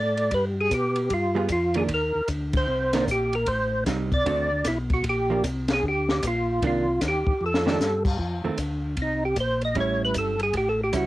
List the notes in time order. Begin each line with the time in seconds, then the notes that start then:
Already playing: A2 D5
0.17 ride
0.31 G2 B4, kick, ride
0.61 G#4
0.71 B2 G4, kick, hi-hat pedal, ride
0.96 ride
1.10 G2 F4, kick, ride
1.35 G3 B3 F4 G#4
1.49 F2 F4, kick, hi-hat pedal, ride
1.74 D#3 A#3 D4 G#4, ride
1.89 D#2, kick, ride
1.94 A#4
2.15 D#2
2.28 D2, kick, hi-hat pedal, ride
2.53 C5, kick, ride
2.68 C2
2.93 D#3 A#3 D4, snare, ride
3.07 A#1 G4, kick, hi-hat pedal
3.33 A#4, ride
3.46 A1 C5, kick, ride
3.86 C2 G3 C4 D#4, kick, snare, hi-hat pedal, ride
4.12 D5, kick, ride
4.26 D2 D3 A3 C4 F#4, kick, ride
4.64 B1 E4, kick, snare, hi-hat pedal, ride
4.90 F#4, kick, ride
5.04 A#1, kick, ride
5.09 G4
5.30 F3 A#3 D4
5.44 C2, kick, hi-hat pedal, ride
5.68 snare, ride
5.73 G#4
5.83 D2, kick
5.88 G4
6.09 snare
6.23 A#1, kick, hi-hat pedal, ride
6.27 F4
6.62 C2 D#3 A#3 D4, kick, ride
6.67 F4
7.01 D#2, kick, snare, hi-hat pedal, ride
7.08 G4
7.26 D#2, kick
7.41 F2
7.46 A4
7.54 snare
7.66 D#3 A3 D4, snare
7.80 G2, snare, hi-hat pedal
8.05 kick, crash
8.19 F2, kick
8.44 F2 D#3 A3 C4
8.58 D2, kick, hi-hat pedal, ride
8.97 C2, kick, ride
9.02 D#4
9.25 G4
9.36 A#1, kick, hi-hat pedal, ride
9.40 C5
9.61 D#5, ride
9.75 A1 G3 C#4 E4, kick, ride
9.80 C#5
10.05 B4
10.14 G1, kick, hi-hat pedal, ride
10.18 A4
10.40 G#4, ride
10.53 A1 G4, kick, ride
10.69 A4
10.84 G4
10.93 C#2 G3 C#4 E4 F#4, kick, hi-hat pedal, ride